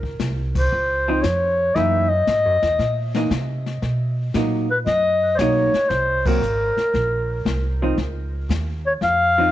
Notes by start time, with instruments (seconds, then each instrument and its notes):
Already playing: upright bass C#2
0.03 kick
0.20 upright bass C2, kick, snare, hi-hat pedal
0.55 clarinet C5, kick, crash
0.72 upright bass C#2, brush sweep
1.08 hollow-body jazz guitar F3 C4 D#4
1.22 upright bass F2, clarinet C#5, kick, snare, hi-hat pedal
1.75 upright bass F#2, hollow-body jazz guitar E3 A#3 D#4, clarinet E5, brush sweep, kick, snare
2.09 clarinet D#5
2.27 upright bass G#2, kick, snare, hi-hat pedal
2.45 upright bass F#2
2.62 upright bass E2, snare
2.79 upright bass A#2, brush sweep, kick, snare
3.14 hollow-body jazz guitar E3 A#3 D#4, snare
3.30 upright bass C3, kick, snare, hi-hat pedal
3.66 snare
3.82 upright bass B2, brush sweep, kick, snare
4.34 upright bass A#2, hollow-body jazz guitar F#3 A#3 D#4, kick, snare, hi-hat pedal
4.71 clarinet B4
4.86 upright bass F#2, clarinet D#5, brush sweep, kick, snare
5.35 upright bass B1, clarinet C5 C#5, kick, snare, hi-hat pedal
5.40 hollow-body jazz guitar F#3 A#3 D#4
5.73 muted upright bass stroke, snare
5.89 upright bass C2, clarinet C5, brush sweep, kick, snare
6.26 hollow-body jazz guitar F#3 A#3 C4, clarinet A#4, kick, crash
6.41 upright bass G#1, hi-hat pedal
6.77 muted upright bass stroke, snare
6.94 upright bass A#1, brush sweep, kick, snare
7.45 upright bass C2, kick, snare, hi-hat pedal
7.82 hollow-body jazz guitar F3 C4 D#4
7.97 upright bass C#2, brush sweep, kick, snare
8.49 upright bass D#2, kick, snare, hi-hat pedal
8.87 clarinet C#5
9.01 upright bass F2, clarinet F5, brush sweep, kick, snare
9.38 hollow-body jazz guitar F3 C4 D#4